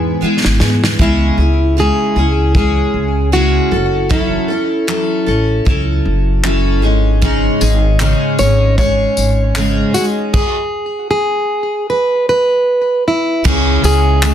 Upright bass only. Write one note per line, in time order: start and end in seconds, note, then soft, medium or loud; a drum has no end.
0.00 0.14 E2 medium
0.21 muted upright bass stroke soft
0.45 0.58 G#1 medium
0.61 0.93 G#2 medium
0.99 1.31 C#2 medium
1.38 1.89 C#2 medium
2.16 2.80 C#2 medium
2.94 3.58 C#2 medium
3.72 4.36 F#1 medium
5.27 5.59 A1 medium
5.67 5.98 C#2 medium
6.05 6.83 F#1 medium
6.83 7.47 G#1 loud
7.61 8.12 G#1 loud
8.39 9.03 G#1 medium
9.17 9.81 G#1 medium
13.45 13.77 C#2 loud
13.83 14.34 C#2 loud